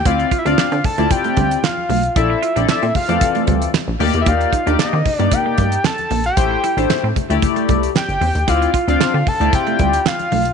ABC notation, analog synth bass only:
X:1
M:4/4
L:1/16
Q:1/4=114
K:Dm
V:1 name="Analog synth bass" clef=bass
D,,2 z D,, z D, z D,, z2 D,,2 z2 =B,,,2 | B,,,2 z B,,, B,, B,, z F,, z2 D,,2 z B,,, _E,, =E,, | _E,,2 z E,, _E, E, z G,, z2 G,,2 z2 B,,,2 | A,,,2 z A,,, z A,, z D,, z2 C,,2 z G,,, E,, _E,, |
D,,2 z D,, D, D, z D,, z2 D,,2 z2 =B,,,2 |]